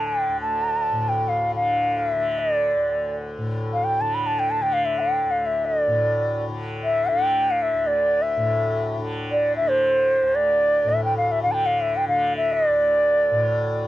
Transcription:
Already playing: tanpura D2 A2 D3
0.07 bansuri G5
0.29 tanpura D2
0.41 bansuri A5
0.91 tanpura A2
1.09 bansuri G5
1.29 bansuri F5
1.54 tanpura D3, bansuri F5
1.98 bansuri F5
2.09 bansuri E5
2.14 tanpura D3
2.39 bansuri D5
2.76 tanpura D2
3.38 tanpura A2
3.73 bansuri F5
3.84 bansuri G5
4.01 tanpura D3, bansuri A5
4.14 bansuri B5
4.27 bansuri A5
4.39 bansuri G5
4.51 bansuri A5
4.61 tanpura D3, bansuri G5
4.73 bansuri F5
4.85 bansuri E5
5.00 bansuri G5
5.25 tanpura D2
5.31 bansuri F5
5.46 bansuri E5
5.65 bansuri D5
5.87 tanpura A2
6.49 tanpura D3
6.84 bansuri E5
7.09 tanpura D3, bansuri G5
7.51 bansuri F5
7.62 bansuri E5
7.74 tanpura D2
7.87 bansuri D5
8.22 bansuri E5
8.37 tanpura A2
8.98 tanpura D3
9.31 bansuri D5
9.56 bansuri E5
9.61 tanpura D3
9.68 bansuri C5
10.22 tanpura D2
10.35 bansuri D5
10.84 tanpura A2
10.89 bansuri E5
11.04 bansuri G5
11.17 bansuri F5
11.28 bansuri E5 F5
11.43 tanpura D3, bansuri F5
11.51 bansuri G5 A5
11.66 bansuri F5
11.81 bansuri E5
11.97 bansuri G5
12.08 tanpura D3, bansuri F5
12.37 bansuri E5
12.53 bansuri D5
12.69 tanpura D2
13.31 tanpura A2

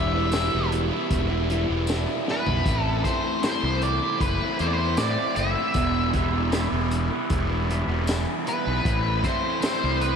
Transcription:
Already playing: fingered electric bass E1, overdriven electric guitar E2 B2 E3 G3 B3 E4, lead electric guitar E5
0.13 overdriven electric guitar E3 G3 B3 E4
0.32 overdriven electric guitar E2 B2 E3 G3 B3 E4, snare, closed hi-hat, tambourine
0.52 fingered electric bass E1, overdriven electric guitar E3 G3 B3 E4
0.72 closed hi-hat
0.90 overdriven electric guitar E3 G3 B3 E4
1.11 fingered electric bass E1, kick, closed hi-hat
1.29 overdriven electric guitar E3 G3 B3 E4
1.49 overdriven electric guitar E3 G3 B3 E4, closed hi-hat
1.67 fingered electric bass E1, overdriven electric guitar E3 G3 B3 E4
1.87 overdriven electric guitar E2 B2 E3 G3 B3 E4, snare, closed hi-hat, tambourine
2.26 overdriven electric guitar E3 G3 B3 E4, snare
2.31 lead electric guitar B4
2.47 fingered electric bass B1, overdriven electric guitar E3 G3 B3 E4, floor tom
2.66 fingered electric bass A1, overdriven electric guitar A2 E3 A3 C4 E4, kick, closed hi-hat
2.83 lead electric guitar A4
3.04 overdriven electric guitar E3 A3 C4 E4, lead electric guitar C5, kick, snare, closed hi-hat
3.24 overdriven electric guitar A3 C4 E4
3.43 overdriven electric guitar A2 E3 A3 C4 E4, lead electric guitar C5, snare, closed hi-hat, tambourine
3.63 fingered electric bass C2, overdriven electric guitar A3 C4 E4
3.82 lead electric guitar D5, closed hi-hat
4.02 overdriven electric guitar A3 C4 E4
4.21 fingered electric bass F#1, lead electric guitar B4, kick, closed hi-hat
4.42 overdriven electric guitar A3 C4 E4
4.59 fingered electric bass E2, overdriven electric guitar E3 A3 C4 E4, lead electric guitar C5, closed hi-hat
4.66 lead electric guitar D5
4.73 lead electric guitar C5
4.78 overdriven electric guitar A3 C4 E4
4.95 overdriven electric guitar A2 E3 A3 C4 E4, fingered electric bass A2, lead electric guitar D5, snare, closed hi-hat, tambourine
5.35 fingered electric bass F#1, overdriven electric guitar E3 A3 C4 E4, lead electric guitar E5, closed hi-hat
5.55 overdriven electric guitar A3 C4 E4
5.73 fingered electric bass E1, overdriven electric guitar E2 B2 E3 G3 B3 E4, kick, closed hi-hat
6.12 overdriven electric guitar E3 G3 B3 E4, kick, closed hi-hat
6.32 overdriven electric guitar E3 G3 B3 E4
6.51 overdriven electric guitar E2 B2 E3 G3 B3 E4, snare, closed hi-hat, tambourine
6.71 fingered electric bass E1, overdriven electric guitar E3 G3 B3 E4
6.91 closed hi-hat
7.10 overdriven electric guitar E3 G3 B3 E4
7.30 fingered electric bass E1, kick, closed hi-hat
7.49 overdriven electric guitar E3 G3 B3 E4
7.69 overdriven electric guitar E3 G3 B3 E4, closed hi-hat
7.87 fingered electric bass E1, overdriven electric guitar G3 B3 E4
7.92 overdriven electric guitar E3
8.07 overdriven electric guitar E2 B2 E3 G3 B3 E4, snare, closed hi-hat, tambourine
8.46 overdriven electric guitar E3 G3 B3 E4, lead electric guitar B4, closed hi-hat
8.66 fingered electric bass B1, overdriven electric guitar E3 G3 B3 E4
8.84 fingered electric bass A1, overdriven electric guitar A2 E3 A3 C4 E4, kick, closed hi-hat
9.24 overdriven electric guitar E3 A3 C4 E4, lead electric guitar C5, kick, snare, closed hi-hat
9.43 overdriven electric guitar A3 C4 E4
9.61 overdriven electric guitar A2 E3 A3 C4, lead electric guitar C5, snare, closed hi-hat, tambourine
9.66 overdriven electric guitar E4
9.83 fingered electric bass C2, overdriven electric guitar A3 C4 E4
10.01 lead electric guitar B4, closed hi-hat

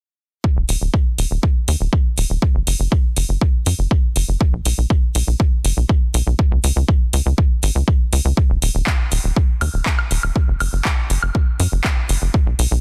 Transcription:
0.44 kick
0.56 analog synth bass D#1
0.69 analog synth bass D#1, open hi-hat
0.81 analog synth bass D#1
0.94 kick
1.18 analog synth bass D#1, open hi-hat
1.31 analog synth bass D#1
1.43 kick
1.68 analog synth bass D#2, open hi-hat
1.80 analog synth bass D#1
1.93 kick
2.18 analog synth bass D#1, open hi-hat
2.30 analog synth bass D#1
2.42 kick
2.55 analog synth bass F#1
2.67 analog synth bass F#1, open hi-hat
2.80 analog synth bass F#1
2.92 kick
3.16 analog synth bass F#1, open hi-hat
3.29 analog synth bass F#1
3.41 kick
3.66 analog synth bass F#2, open hi-hat
3.79 analog synth bass F#1
3.91 kick
4.16 analog synth bass F#1, open hi-hat
4.28 analog synth bass F#1
4.41 kick
4.53 analog synth bass B1
4.65 analog synth bass B1, open hi-hat
4.78 analog synth bass B1
4.90 kick
5.15 analog synth bass B1, open hi-hat
5.27 analog synth bass B1
5.40 kick
5.64 analog synth bass F#1, open hi-hat
5.77 analog synth bass B1
5.89 kick
6.14 analog synth bass B1, open hi-hat
6.27 analog synth bass B1
6.39 kick
6.51 analog synth bass C#2
6.64 analog synth bass C#2, open hi-hat
6.76 analog synth bass C#2
6.88 kick
7.13 analog synth bass C#2, open hi-hat
7.26 analog synth bass C#2
7.38 kick
7.63 analog synth bass G#1, open hi-hat
7.75 analog synth bass C#2
7.88 kick
8.13 analog synth bass C#2, open hi-hat
8.25 analog synth bass C#2
8.37 kick
8.50 analog synth bass D#1
8.62 analog synth bass D#1, open hi-hat
8.75 analog synth bass D#1
8.87 kick, clap
9.12 analog synth bass D#1, open hi-hat
9.24 analog synth bass D#1
9.36 kick
9.61 analog synth bass D#2, open hi-hat, high woodblock
9.74 analog synth bass D#1
9.86 kick, clap
9.99 high woodblock
10.11 analog synth bass D#1, open hi-hat
10.23 analog synth bass D#1, high woodblock
10.36 kick
10.48 analog synth bass F#1
10.60 analog synth bass F#1, open hi-hat, high woodblock
10.73 analog synth bass F#1
10.85 kick, clap
11.10 analog synth bass F#1, open hi-hat
11.22 analog synth bass F#1, high woodblock
11.35 kick
11.60 analog synth bass F#2, open hi-hat
11.72 analog synth bass F#1
11.84 kick, clap
12.09 analog synth bass F#1, open hi-hat
12.22 analog synth bass F#1
12.34 kick
12.46 analog synth bass B1
12.59 analog synth bass B1, open hi-hat
12.71 analog synth bass B1

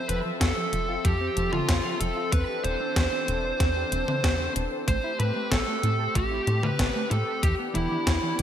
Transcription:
Already playing: analog synth pad F3 C4 A4 E5
0.09 analog synth bass F1, clean electric guitar F3, lead electric guitar B4, closed hi-hat
0.25 clean electric guitar F3
0.41 analog synth bass F2, clean electric guitar F4, lead electric guitar A4, kick, snare, closed hi-hat
0.57 clean electric guitar F3
0.73 analog synth bass F1, clean electric guitar F3, closed hi-hat
0.89 clean electric guitar F4
1.05 analog synth bass F2, clean electric guitar F3, lead electric guitar G4, kick, closed hi-hat
1.21 clean electric guitar C4
1.37 analog synth bass F1, clean electric guitar F3, closed hi-hat
1.53 clean electric guitar F3, lead electric guitar F4, mid tom
1.69 analog synth bass F2, clean electric guitar F4, kick, snare, closed hi-hat
1.85 clean electric guitar F3
2.01 analog synth bass F1, clean electric guitar F3, lead electric guitar A4, closed hi-hat
2.17 clean electric guitar F4
2.32 analog synth bass E2, analog synth pad E3 D4, clean electric guitar C4, lead electric guitar B4, kick, closed hi-hat
2.49 clean electric guitar G4
2.64 analog synth bass E1, clean electric guitar C4, lead electric guitar C5, closed hi-hat
2.80 clean electric guitar C4
2.96 analog synth bass E2, clean electric guitar C5, kick, snare, closed hi-hat
3.12 clean electric guitar C4
3.28 analog synth bass E1, clean electric guitar C4, closed hi-hat
3.44 clean electric guitar C5
3.60 analog synth bass E2, clean electric guitar C4, kick, snare, closed hi-hat
3.76 clean electric guitar G4
3.92 analog synth bass E1, clean electric guitar C4, closed hi-hat
4.08 clean electric guitar C4, mid tom
4.24 analog synth bass E2, clean electric guitar C5, kick, snare, closed hi-hat
4.40 clean electric guitar C4
4.56 analog synth bass E1, clean electric guitar C4, closed hi-hat
4.72 clean electric guitar C5
4.88 analog synth bass A1, analog synth pad A3 C4 G4, clean electric guitar A3, lead electric guitar C5, kick, closed hi-hat
5.04 clean electric guitar E4
5.20 analog synth bass A2, clean electric guitar A3, lead electric guitar B4, closed hi-hat
5.36 clean electric guitar A3
5.52 analog synth bass A1, lead electric guitar A4, clean electric guitar A4, kick, snare, closed hi-hat
5.68 clean electric guitar A3
5.83 analog synth bass A2, clean electric guitar A3, closed hi-hat
6.00 clean electric guitar A4
6.15 analog synth bass A1, clean electric guitar A3, lead electric guitar G4, kick, closed hi-hat
6.31 clean electric guitar E4
6.47 analog synth bass A2, clean electric guitar A3, closed hi-hat
6.63 clean electric guitar A3, lead electric guitar B4, mid tom
6.79 analog synth bass A1, clean electric guitar A4, kick, snare, closed hi-hat
6.95 clean electric guitar A3
7.11 analog synth bass A2, clean electric guitar A3, lead electric guitar A4, closed hi-hat
7.27 clean electric guitar A4
7.43 analog synth bass E2, analog synth pad E3 B3 D4, clean electric guitar E3, lead electric guitar G4, kick, closed hi-hat
7.59 clean electric guitar B3
7.75 analog synth bass E1, clean electric guitar E3, lead electric guitar E4, closed hi-hat
7.91 clean electric guitar E3
8.07 analog synth bass E2, clean electric guitar E4, kick, snare, closed hi-hat
8.23 clean electric guitar E3
8.39 analog synth bass E1, clean electric guitar E3, closed hi-hat

